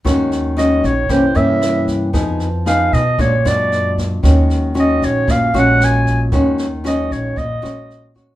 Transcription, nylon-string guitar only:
\new Staff \with { instrumentName = "Nylon-string guitar" } { \time 4/4 \key ees \minor \tempo 4 = 115 << { <aes des' ges'>4 <aes des' ges'>8 r8 <e bes des'>8 <e bes des'>4. | <ces' ees' aes'>8 r8 <ces' ees' aes'>8 r8 <aes d' fis'>8 <aes d' fis'>4. | <aes des' ges'>4 <aes des' ges'>4. <aes des' ges'>4. | <aes des' ges'>8 r8 <aes des' ges'>4 r8 <aes des' ges'>4 <aes des' ges'>8 | } \\ { ees2 c2 | f2 bes,2 | ees2 bes,2 | ees2 bes,2 | } >> }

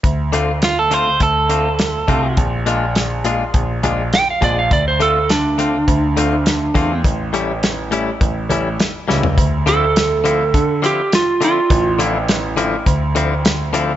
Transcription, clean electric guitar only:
\new Staff \with { instrumentName = "Clean electric guitar" } { \time 4/4 \key d \minor \tempo 4 = 103 r8 <d a c' f'>8 r8 <d a c' f'>8 r8 <d a c' f'>8 r8 <d a c' f'>8 | r8 <bes, aes d' f'>8 r8 <bes, aes d' f'>8 r8 <bes, aes d' f'>8 r8 <bes, aes d' f'>8 | r8 <d a c' f'>8 r8 <d a c' f'>8 r8 <d a c' f'>8 r8 <d a c' f'>8 | r8 <a, g cis' e'>8 r8 <a, g cis' e'>8 r8 <a, g cis' e'>8 r8 <a, g cis' e'>8 |
r8 <d f c' e'>8 r8 <d f c' e'>8 r8 <d f c' e'>8 r8 <d f c' e'>8 | r8 <d f c' e'>8 r8 <d f c' e'>8 r8 <d f c' e'>8 r8 <d f c' e'>8 | }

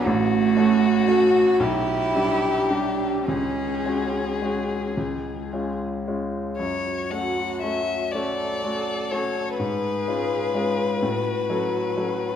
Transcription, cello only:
\new Staff \with { instrumentName = "Cello" } { \time 6/8 \key fis \minor \tempo 4. = 39 a4 fis'8 e'4 d'8 | cis'4. r4. | fis'4. a'4. | gis'4. fis'4. | }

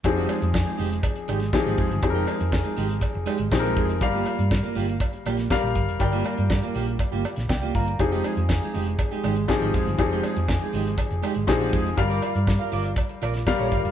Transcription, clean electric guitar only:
\new Staff \with { instrumentName = "Clean electric guitar" } { \time 4/4 \key f \dorian \tempo 4 = 121 r16 <aes ees' g'>16 <aes ees' aes'>16 r8 <aes ees' aes'>16 <aes ees' g'>8 r8 <aes ees' g'>8 r16 <aes ees' g'>16 <aes ees' aes'>16 r16 | r16 <aes ees' g'>16 <aes ees' aes'>16 r8 <aes ees' aes'>16 <aes ees' g'>8 r8 <aes ees' g'>8 r16 <aes ees' g'>16 <aes ees' aes'>16 r16 | r16 <bes f' g'>16 <bes f' bes'>16 r8 <bes f' bes'>16 <bes f' g'>8 r8 <bes f' g'>8 r4 | r16 <bes f' g'>16 <bes f' bes'>16 r8 <bes f' bes'>16 <bes f' g'>8 r16 <bes f' g'>8 r8 <bes f' g'>16 <bes f' bes'>16 r16 |
r16 <aes ees' g'>16 <aes ees' aes'>16 r8 <aes ees' aes'>16 <aes ees' g'>8 r16 <aes ees' g'>16 <aes ees' g'>8 r16 <aes ees' g'>16 <aes ees' aes'>16 r16 | r16 <aes ees' g'>16 <aes ees' aes'>16 r8 <aes ees' aes'>16 <aes ees' g'>8 r8 <aes ees' g'>8 r16 <aes ees' g'>16 <aes ees' aes'>16 r16 | r16 <f' bes' d''>16 <f' bes' f''>16 r8 <f' bes' f''>16 <f' bes' d''>8 r8 <f' bes' d''>8 r16 <f' bes' d''>16 <f' bes' f''>16 r16 | }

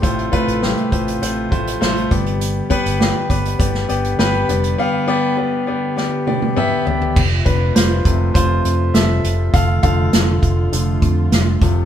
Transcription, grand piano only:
<<
  \new Staff \with { instrumentName = "Grand piano" } { \time 4/4 \key f \lydian \tempo 4 = 101 << { g'16 r2. r8. | r1 | r1 | r8 <d' b'>8 <f' c''>4 <f' c''>4 <a' e''>4 |
<a' f''>8 <a' f''>2 r4. | } \\ { <a f' c''>8 <a f' b'>8 <a f' g'>8 <a f' c''>8 <a f' c''>8 <a f' c''>8 <a f' c''>8 <b g' d''>8~ | <b g' d''>8 <b g' b'>8 <b g' d''>8 <b g' b'>8 <b g' d''>8 <b g' d''>8 <b g' b'>8 <b g' d''>8 | <b g' f''>8 <b g' d''>8 <b g' d''>8 <b g' d''>8 <b g' d''>8 <b g' d''>8 <b g' e''>8 <b g' d''>8 | r1 |
r1 | } >> }
  \new Staff \with { instrumentName = "Grand piano" } { \clef bass \time 4/4 \key f \lydian a,4. r2 g,8~ | g,4 r2 r8 g,8~ | g,4 r2. | r4. <c f a>8 r2 |
r8 <d f a>4. <d f a>8 r4 <c f a>8 | }
>>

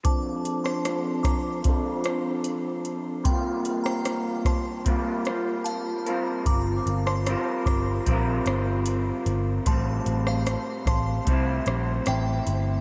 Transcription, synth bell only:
\new Staff \with { instrumentName = "Synth bell" } { \time 4/4 \key f \major \tempo 4 = 75 <a'' d'''>8 r16 <a'' c'''>8 r16 <bes'' d'''>16 r2 r16 | <g'' c'''>8 r16 <g'' bes''>8 r16 <a'' c'''>16 r4 r16 <f'' a''>8. r16 | <bes'' d'''>8 r16 <a'' c'''>8 r16 <bes'' d'''>16 r2 r16 | <a'' c'''>8 r16 <f'' a''>8 r16 <a'' c'''>16 r4 r16 <e'' g''>8. r16 | }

